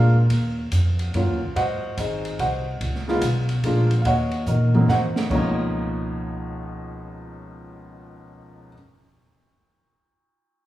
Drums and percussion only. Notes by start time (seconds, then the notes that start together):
0.30 kick, ride
0.72 kick, hi-hat pedal, ride
0.99 ride
1.14 kick, ride
1.56 kick, ride
1.97 kick, hi-hat pedal, ride
2.25 ride
2.39 kick, ride
2.80 kick, ride
2.95 snare
3.08 snare
3.21 kick, hi-hat pedal, ride
3.49 ride
3.63 kick, ride
3.91 ride
4.05 kick, ride
4.31 ride
4.46 hi-hat pedal, high tom
4.74 high tom
4.89 snare
5.16 snare
5.30 kick, crash